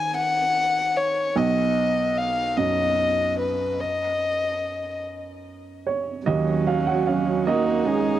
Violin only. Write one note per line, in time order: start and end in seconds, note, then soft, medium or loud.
0.00 0.16 G#5 medium
0.16 0.98 F#5 medium
0.97 1.38 C#5 medium
1.37 2.18 D#5 medium
2.17 2.59 F5 medium
2.57 3.38 D#5 medium
3.39 3.81 B4 soft
3.80 5.03 D#5 soft
6.28 7.49 C#4 soft
7.47 8.20 D#4 medium